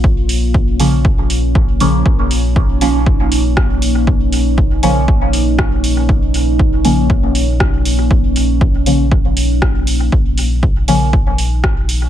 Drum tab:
HH |-o-o-o-o|-o-o-o-o|-o-o-o-o|-o-o-o-o|
SD |--------|------r-|------r-|------r-|
BD |o-o-o-o-|o-o-o-o-|o-o-o-o-|o-o-o-o-|

HH |-o-o-o-o|-o-o-o-o|
SD |------r-|------r-|
BD |o-o-o-o-|o-o-o-o-|